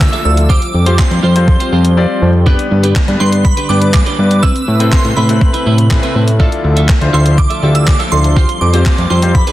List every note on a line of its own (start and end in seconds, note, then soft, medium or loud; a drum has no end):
0.00 0.48 D3 medium
0.00 0.48 F3 medium
0.00 0.46 A3 medium
0.00 0.48 E5 medium
0.00 0.23 E6 loud
0.00 kick loud
0.00 snare medium
0.00 clap loud
0.13 0.24 F4 medium
0.13 0.24 A4 medium
0.13 0.25 E5 medium
0.13 closed hi-hat soft
0.25 0.59 D2 medium
0.25 0.50 D4 medium
0.25 0.50 E4 medium
0.25 0.50 F4 medium
0.25 0.50 A4 medium
0.25 0.51 E6 loud
0.37 muted clean electric guitar stroke medium
0.37 closed hi-hat medium
0.49 2.44 F3 medium
0.49 4.39 G3 medium
0.49 2.44 C4 medium
0.49 0.69 F4 medium
0.49 0.61 G4 medium
0.49 0.60 C5 medium
0.49 0.96 D6 loud
0.49 kick loud
0.62 muted clean electric guitar stroke soft
0.62 closed hi-hat soft
0.74 0.99 F2 medium
0.74 muted clean electric guitar stroke soft
0.86 1.16 C4 medium
0.86 1.16 F4 medium
0.86 1.02 F4 medium
0.86 1.02 G4 medium
0.86 1.16 G4 medium
0.86 1.02 C5 medium
0.86 1.17 C5 medium
0.86 closed hi-hat medium
0.99 1.93 C6 medium
0.99 kick loud
0.99 snare medium
0.99 clap loud
1.11 1.20 F2 medium
1.11 muted clean electric guitar stroke soft
1.11 closed hi-hat soft
1.23 1.57 F2 medium
1.23 1.43 F4 medium
1.23 1.35 G4 medium
1.23 1.34 C5 medium
1.36 1.73 C4 medium
1.36 1.73 F4 medium
1.36 1.73 G4 medium
1.36 1.73 C5 medium
1.36 muted clean electric guitar stroke medium
1.36 closed hi-hat medium
1.48 muted clean electric guitar stroke soft
1.48 kick loud
1.60 1.71 F4 soft
1.60 1.72 G4 medium
1.60 1.72 C5 medium
1.60 closed hi-hat medium
1.72 2.06 F2 loud
1.72 1.92 F4 medium
1.72 1.84 G4 loud
1.72 1.84 C5 medium
1.85 muted clean electric guitar stroke soft
1.85 closed hi-hat medium
1.97 2.27 C4 medium
1.97 2.27 F4 medium
1.97 2.27 G4 medium
1.97 2.27 D5 medium
2.22 2.56 F2 medium
2.46 4.41 D3 medium
2.46 2.84 B3 medium
2.46 2.66 D4 medium
2.46 2.84 D4 medium
2.46 2.84 G4 medium
2.46 2.58 G4 medium
2.46 6.36 B4 medium
2.46 2.84 B4 loud
2.46 2.58 B4 loud
2.46 kick loud
2.59 muted clean electric guitar stroke soft
2.59 closed hi-hat soft
2.71 2.96 G2 loud
2.71 muted clean electric guitar stroke soft
2.83 2.99 D4 medium
2.83 2.99 G4 medium
2.83 2.99 B4 medium
2.83 closed hi-hat medium
2.96 kick loud
2.96 snare medium
2.96 clap loud
3.08 3.16 G2 medium
3.08 3.45 B3 medium
3.08 3.45 D4 medium
3.08 3.45 G4 medium
3.08 3.45 B4 medium
3.08 muted clean electric guitar stroke medium
3.08 closed hi-hat soft
3.20 3.54 G2 medium
3.20 3.40 D4 medium
3.20 3.32 G4 medium
3.20 3.31 B4 medium
3.20 3.43 C6 medium
3.32 muted clean electric guitar stroke medium
3.32 closed hi-hat medium
3.45 3.68 B5 medium
3.45 muted clean electric guitar stroke soft
3.45 kick loud
3.57 3.68 D4 soft
3.57 3.69 G4 medium
3.57 3.69 B4 medium
3.57 closed hi-hat medium
3.69 4.03 G2 loud
3.69 3.99 B3 medium
3.69 3.89 D4 medium
3.69 3.99 D4 medium
3.69 3.99 G4 medium
3.69 3.81 G4 medium
3.69 3.99 B4 medium
3.69 3.81 B4 medium
3.69 3.93 D6 medium
3.82 muted clean electric guitar stroke soft
3.82 closed hi-hat medium
3.94 4.45 D6 medium
3.94 muted clean electric guitar stroke soft
3.94 kick loud
3.94 snare medium
3.94 clap loud
4.06 4.17 D4 medium
4.06 4.18 G4 medium
4.06 4.18 B4 medium
4.06 closed hi-hat soft
4.18 4.52 G2 medium
4.18 4.43 B3 medium
4.18 4.43 D4 medium
4.18 4.43 G4 medium
4.18 4.43 B4 medium
4.18 muted clean electric guitar stroke soft
4.31 muted clean electric guitar stroke soft
4.31 closed hi-hat medium
4.43 6.38 C3 medium
4.43 8.33 A3 medium
4.43 4.63 C4 medium
4.43 4.55 E4 medium
4.43 4.54 B4 loud
4.43 4.94 E6 loud
4.43 kick loud
4.55 muted clean electric guitar stroke soft
4.55 closed hi-hat soft
4.68 4.93 A2 loud
4.68 muted clean electric guitar stroke soft
4.80 5.10 C4 medium
4.80 4.96 C4 medium
4.80 5.10 E4 medium
4.80 4.96 E4 medium
4.80 5.10 A4 medium
4.80 4.95 B4 medium
4.80 5.10 B4 medium
4.80 closed hi-hat medium
4.92 5.17 C6 medium
4.92 kick loud
4.92 snare medium
4.92 clap loud
5.05 5.13 A2 loud
5.05 muted clean electric guitar stroke medium
5.05 closed hi-hat soft
5.17 5.51 A2 medium
5.17 5.37 C4 medium
5.17 5.29 E4 medium
5.17 5.28 B4 medium
5.17 6.11 B5 medium
5.29 5.66 C4 medium
5.29 5.66 E4 medium
5.29 5.67 A4 medium
5.29 5.67 B4 medium
5.29 muted clean electric guitar stroke soft
5.29 closed hi-hat medium
5.41 muted clean electric guitar stroke soft
5.41 kick loud
5.54 5.65 C4 medium
5.54 5.65 E4 medium
5.54 5.66 B4 medium
5.54 closed hi-hat medium
5.66 6.00 A2 medium
5.66 5.86 C4 medium
5.66 5.78 E4 medium
5.66 5.77 B4 medium
5.78 muted clean electric guitar stroke soft
5.78 closed hi-hat medium
5.90 6.20 C4 medium
5.90 6.20 E4 medium
5.90 6.21 A4 medium
5.90 6.21 B4 loud
5.90 muted clean electric guitar stroke soft
5.90 kick loud
5.90 snare medium
5.90 clap loud
6.03 6.14 C4 medium
6.03 6.15 E4 medium
6.03 6.15 B4 medium
6.03 closed hi-hat medium
6.15 6.49 A2 medium
6.15 6.31 C4 medium
6.15 6.27 E4 medium
6.15 6.26 B4 medium
6.27 muted clean electric guitar stroke medium
6.27 closed hi-hat medium
6.39 8.35 D3 medium
6.39 9.32 F3 medium
6.39 6.77 D4 loud
6.39 6.77 E4 medium
6.39 6.59 F4 medium
6.39 6.77 F4 medium
6.39 6.77 A4 loud
6.39 6.52 A4 loud
6.39 8.34 E5 medium
6.39 6.51 E5 loud
6.39 kick loud
6.52 muted clean electric guitar stroke soft
6.52 closed hi-hat soft
6.64 6.90 D2 loud
6.64 muted clean electric guitar stroke soft
6.76 6.93 F4 soft
6.76 6.92 A4 medium
6.76 6.92 E5 medium
6.76 closed hi-hat medium
6.89 kick loud
6.89 snare medium
6.89 clap loud
7.01 7.10 D2 medium
7.01 7.39 D4 medium
7.01 7.39 E4 medium
7.01 7.39 F4 medium
7.01 7.39 C5 loud
7.01 muted clean electric guitar stroke soft
7.01 closed hi-hat soft
7.13 7.47 D2 medium
7.13 7.33 F4 medium
7.13 7.25 A4 medium
7.13 7.24 E5 medium
7.13 7.39 C6 medium
7.26 muted clean electric guitar stroke soft
7.26 closed hi-hat medium
7.38 7.73 D6 loud
7.38 muted clean electric guitar stroke soft
7.38 kick loud
7.50 7.61 F4 medium
7.50 7.62 A4 medium
7.50 7.62 E5 medium
7.50 closed hi-hat medium
7.62 7.96 D2 loud
7.62 7.93 D4 medium
7.62 7.93 E4 medium
7.62 7.82 F4 medium
7.62 7.93 F4 medium
7.62 7.93 G4 medium
7.62 7.75 A4 medium
7.62 7.74 E5 loud
7.75 7.81 E6 loud
7.75 muted clean electric guitar stroke soft
7.75 closed hi-hat medium
7.87 8.13 D6 loud
7.87 kick loud
7.87 snare medium
7.87 clap loud
7.99 8.11 F4 medium
7.99 8.11 A4 medium
7.99 8.12 E5 medium
7.99 closed hi-hat medium
8.12 8.46 D2 medium
8.12 8.37 D4 medium
8.12 8.37 E4 medium
8.12 8.37 F4 medium
8.12 8.37 A4 medium
8.12 8.63 C6 loud
8.24 muted clean electric guitar stroke soft
8.24 closed hi-hat medium
8.36 9.34 G3 medium
8.36 9.34 C4 medium
8.36 8.56 F4 medium
8.36 8.49 G4 medium
8.36 8.48 C5 medium
8.36 kick loud
8.49 muted clean electric guitar stroke soft
8.49 closed hi-hat soft
8.61 8.87 F2 medium
8.61 9.12 D6 medium
8.61 muted clean electric guitar stroke soft
8.73 9.03 C4 medium
8.73 9.03 F4 medium
8.73 8.89 F4 medium
8.73 9.03 G4 medium
8.73 8.89 G4 medium
8.73 8.89 C5 medium
8.73 9.04 C5 medium
8.73 closed hi-hat medium
8.86 kick loud
8.86 snare medium
8.86 clap loud
8.98 9.07 F2 loud
8.98 muted clean electric guitar stroke soft
8.98 closed hi-hat soft
9.10 9.44 F2 medium
9.10 9.30 F4 medium
9.10 9.22 G4 medium
9.10 9.22 C5 medium
9.10 9.33 C6 medium
9.22 9.35 C4 medium
9.22 9.35 F4 medium
9.22 9.35 G4 medium
9.22 9.35 C5 medium
9.22 muted clean electric guitar stroke medium
9.22 closed hi-hat medium
9.34 9.52 E3 medium
9.34 9.52 B3 medium
9.34 9.52 D4 medium
9.34 9.52 G#4 medium
9.34 9.52 B5 medium
9.34 muted clean electric guitar stroke soft
9.34 kick loud
9.47 9.52 D4 medium
9.47 9.52 G#4 medium
9.47 9.52 B4 medium
9.47 closed hi-hat medium